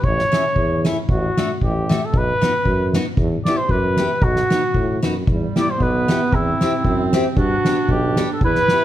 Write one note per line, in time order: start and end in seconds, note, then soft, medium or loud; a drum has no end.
0.03 0.22 A1 medium
0.03 0.85 C#5 loud
0.03 kick medium
0.19 snare soft
0.32 0.42 A3 medium
0.32 0.43 C#4 medium
0.32 0.43 E4 medium
0.32 snare medium
0.56 0.90 E2 medium
0.56 kick medium
0.85 0.95 A3 medium
0.85 0.95 C#4 medium
0.85 0.96 E4 medium
0.85 snare medium
1.09 1.27 A1 medium
1.09 1.58 F#4 medium
1.09 kick medium
1.37 1.48 A3 medium
1.37 1.48 D4 soft
1.37 1.48 F#4 medium
1.37 snare medium
1.61 1.95 A1 medium
1.61 2.07 G4 medium
1.61 kick medium
1.89 2.00 A3 medium
1.89 2.00 D4 medium
1.89 2.00 F#4 medium
1.89 snare medium
2.05 2.19 A4 medium
2.13 2.31 B1 medium
2.13 kick medium
2.18 2.95 B4 loud
2.42 2.52 B3 medium
2.42 2.52 D#4 medium
2.42 2.52 F#4 medium
2.42 snare medium
2.65 2.99 F#2 loud
2.65 kick medium
2.93 3.04 B3 medium
2.93 3.05 D#4 medium
2.93 3.05 F#4 medium
2.93 snare medium
3.17 3.35 E2 loud
3.17 kick medium
3.45 3.56 B3 medium
3.45 3.57 E4 medium
3.45 3.57 G4 medium
3.45 3.58 D5 medium
3.45 snare medium
3.57 3.72 C5 medium
3.69 4.03 F#2 loud
3.69 4.25 B4 medium
3.69 kick medium
3.96 4.08 B3 medium
3.96 4.08 E4 soft
3.96 4.09 G4 medium
3.96 snare medium
4.21 4.40 B1 medium
4.21 5.04 F#4 loud
4.21 kick medium
4.36 snare soft
4.50 4.61 B3 medium
4.50 4.61 D#4 soft
4.50 4.62 F#4 medium
4.50 snare medium
4.74 5.00 A2 medium
4.74 kick medium
5.02 5.24 F#2 medium
5.02 5.13 B3 medium
5.02 5.14 D#4 medium
5.02 5.14 F#4 medium
5.02 snare medium
5.27 5.46 E2 medium
5.27 5.79 G3 medium
5.27 kick medium
5.56 5.66 B3 medium
5.56 5.66 E4 soft
5.56 5.66 G4 medium
5.56 5.72 D5 medium
5.56 snare medium
5.70 5.84 C5 medium
5.78 6.14 B1 medium
5.78 6.34 B3 medium
5.78 kick medium
5.83 6.36 B4 medium
6.08 6.19 B3 medium
6.08 6.19 E4 soft
6.08 6.19 G4 medium
6.08 snare medium
6.32 6.51 E2 medium
6.32 6.84 C4 medium
6.32 7.14 E4 medium
6.32 kick medium
6.61 6.71 C4 medium
6.61 6.71 E4 soft
6.61 6.72 G4 medium
6.61 snare medium
6.84 7.18 F#2 medium
6.84 7.39 C4 medium
6.84 kick medium
7.13 7.23 C4 medium
7.13 7.24 E4 medium
7.13 7.24 G4 medium
7.13 snare medium
7.36 7.55 G2 medium
7.36 8.42 D4 medium
7.36 7.93 F#4 loud
7.36 kick medium
7.65 7.76 B3 medium
7.65 7.76 D4 medium
7.65 7.76 G4 medium
7.65 snare medium
7.89 8.23 B1 loud
7.89 8.31 G4 medium
7.89 kick medium
8.16 8.28 B3 medium
8.16 8.28 D4 soft
8.16 8.28 G4 medium
8.16 snare medium
8.33 8.42 A4 medium
8.41 8.59 E2 medium
8.41 8.85 E4 medium
8.41 kick medium
8.45 8.85 B4 loud
8.55 snare soft
8.68 8.80 B3 medium
8.68 8.81 E4 soft
8.68 8.81 G4 medium
8.68 snare medium